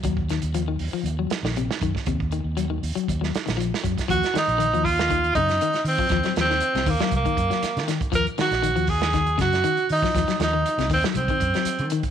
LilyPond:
<<
  \new Staff \with { instrumentName = "Tenor saxophone" } { \time 4/4 \key ees \dorian \tempo 4 = 119 r1 | r1 | ges'8 ees'4 f'4 ees'4 c'8~ | c'8 c'4 bes8 bes4. r8 |
bes'8 ges'4 aes'4 ges'4 ees'8~ | ees'8 ees'4 c'8 c'4. r8 | }
  \new Staff \with { instrumentName = "Clean electric guitar" } { \clef bass \time 4/4 \key ees \dorian ges8 ees8 f16 ees8 f8 ges8 ees16 c8 ees8 | c8 ees8 ges16 ees8 ges8 ges8 ees16 f8 ges8 | f8 ees8 ees16 f8 r16 ees8 des8 ees8 r16 f16 | f16 ges16 f16 ees8 c16 ees16 ges8 ees8 ges8 r16 ees8 |
f8 ees8 ees16 f8 r16 ees8 des8 ees8 r16 f16 | f16 ges16 f16 ees8 c16 ees16 ges8 ees8 ges8 r16 ees8 | }
  \new Staff \with { instrumentName = "Fingered electric bass" } { \clef bass \time 4/4 \key ees \dorian ees,8. ees,8. ees,16 r16 ees,8 r16 bes,,8 r16 ges,16 r16 | ees,8. ees,8. ees,16 r16 ees,8 r16 bes,,8 r16 ges,16 r16 | ees,16 r8 bes,,8 ees,4~ ees,16 ges,8 r8 ees16 r16 | ees,16 r16 ees,8 r16 c,16 ees,16 r16 c,16 r16 ges,16 r8 ees8 r16 |
ees,16 r8 bes,,8 ees,4~ ees,16 ges,8 r8 ees16 r16 | ees,16 r16 ees,8 r16 c,16 ees,16 r16 c,16 r16 ges,16 r8 ees8 r16 | }
  \new DrumStaff \with { instrumentName = "Drums" } \drummode { \time 4/4 <hh bd>16 bd16 <hh sn>16 hh16 hh8 hho8 hh8 <hh sn>16 sn16 hh16 sn16 <hh bd>16 <bd sn>16 | <hh bd>16 bd16 hh8 hh8 hho16 hh16 <hh bd>16 sn16 <hh sn>16 <hh sn>16 hh16 sn16 <hh bd>16 <hh bd sn>16 | <hh bd>16 <hh sn>16 <hh sn>16 hh16 hh16 hh16 <hho bd>16 <hh sn>16 <hh bd>16 hh16 <hh bd>16 <hh sn>16 hh16 <hh sn>16 hho16 bd16 | <hh bd sn>16 <hh sn>16 <hh sn>16 sn16 hh16 <hh sn>16 <hho bd>16 <hh sn>16 <hh bd>16 <hh bd>16 <hh bd>16 <hh sn>16 <hh sn>16 <hh sn>16 <hh sn>16 <hh bd>16 |
<hh bd>16 hh16 <hh sn>16 <hh sn>16 hh16 hh16 <hho bd>16 <hh sn>16 <hh bd sn>16 hh16 <hh bd sn>16 <hh sn>16 hh16 hh16 hho16 <bd sn>16 | <hh bd sn>16 <hh sn>16 <hh sn>8 hh16 <hh sn>16 <hho bd>16 <hh sn>16 <hh bd>16 <hh bd>16 <hh bd>16 <hh sn>16 hh16 hh16 hh16 <hh bd>16 | }
>>